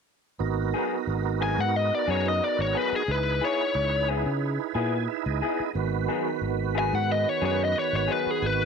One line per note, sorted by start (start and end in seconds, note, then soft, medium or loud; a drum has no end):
0.39 0.72 G#1 medium
0.39 3.03 B3 medium
0.39 3.03 D#4 medium
0.39 3.03 F#4 medium
0.39 3.04 A#4 medium
0.74 0.96 F#3 medium
0.74 0.95 B3 medium
0.74 0.95 D#4 medium
0.74 0.95 G#4 medium
1.07 1.56 G#1 medium
1.41 1.62 F#3 medium
1.41 1.62 B3 soft
1.41 1.62 D#4 medium
1.41 1.62 G#4 medium
1.41 1.59 G#5 medium
1.58 1.90 G#2 medium
1.58 1.76 F#5 medium
1.76 1.92 D#5 medium
1.95 2.10 D5 medium
2.08 2.39 F#2 medium
2.08 2.29 F#3 medium
2.08 2.29 B3 medium
2.08 2.29 D#4 medium
2.08 2.28 G#4 medium
2.08 2.26 C#5 medium
2.28 2.42 D#5 medium
2.44 2.60 D5 medium
2.59 2.73 G#1 medium
2.59 2.77 C#5 medium
2.75 2.96 F#3 soft
2.75 2.96 B3 medium
2.75 2.96 D#4 medium
2.75 2.95 G#4 medium
2.75 2.93 B4 medium
2.92 3.11 G#4 medium
2.92 muted fingered electric bass stroke soft
3.08 3.39 C#2 loud
3.08 5.71 D#4 medium
3.08 5.71 E4 medium
3.08 5.71 G#4 medium
3.08 5.71 B4 medium
3.08 3.42 B4 medium
3.41 3.63 B3 medium
3.41 3.63 E4 medium
3.41 3.62 G#4 medium
3.41 4.08 C#5 loud
3.75 4.23 C#2 medium
4.08 4.30 B3 soft
4.08 4.29 E4 medium
4.08 4.29 G#4 medium
4.26 4.57 C#3 medium
4.74 5.06 A#2 medium
4.74 4.96 B3 medium
4.74 4.96 E4 medium
4.74 4.96 G#4 medium
4.74 5.05 G#5 medium
5.08 5.24 E5 medium
5.25 5.41 C#2 medium
5.25 5.40 D#5 medium
5.41 5.63 B3 medium
5.41 5.63 E4 medium
5.41 5.63 G#4 medium
5.41 5.72 D#5 medium
5.60 muted fingered electric bass stroke soft
5.74 6.06 G#1 medium
5.74 8.65 D#3 medium
5.74 8.65 B3 medium
5.74 8.65 F#4 medium
5.74 8.65 B4 medium
6.08 6.30 F#3 medium
6.08 6.29 B3 medium
6.08 6.29 D#4 medium
6.08 6.29 G#4 medium
6.41 6.90 G#1 medium
6.75 6.96 F#3 medium
6.75 6.96 B3 medium
6.75 6.96 D#4 medium
6.75 6.96 G#4 medium
6.79 6.95 G#5 medium
6.93 7.24 G#2 medium
6.93 7.09 F#5 medium
7.12 7.29 D#5 medium
7.29 7.43 C#5 medium
7.42 7.73 F#2 medium
7.42 7.63 F#3 medium
7.42 7.63 B3 medium
7.42 7.63 D#4 medium
7.42 7.62 G#4 medium
7.42 7.61 C#5 medium
7.65 7.77 D#5 medium
7.79 7.94 C#5 medium
7.93 8.07 G#1 medium
7.93 8.09 C#5 medium
8.08 8.29 F#3 soft
8.08 8.29 B3 medium
8.08 8.29 D#4 medium
8.08 8.29 G#4 medium
8.12 8.31 B4 medium
8.26 muted fingered electric bass stroke soft
8.31 8.46 G#4 medium
8.42 8.65 G#1 loud
8.46 8.65 B4 medium